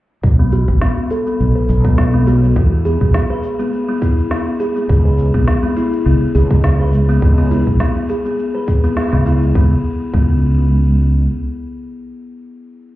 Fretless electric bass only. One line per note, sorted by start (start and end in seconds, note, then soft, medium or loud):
0.23 0.62 B1 medium
0.68 0.78 A1 medium
1.40 1.52 B1 medium
1.69 2.51 B1 loud
2.56 2.95 E2 medium
3.01 3.11 B1 medium
4.89 5.28 C#2 loud
5.34 5.44 B1 medium
6.06 6.18 C#2 medium
6.35 7.17 C#2 loud
7.22 7.61 C#2 loud
7.67 7.77 B1 medium
9.13 9.50 C#2 medium
9.55 9.72 C#2 medium
10.14 11.26 C#2 loud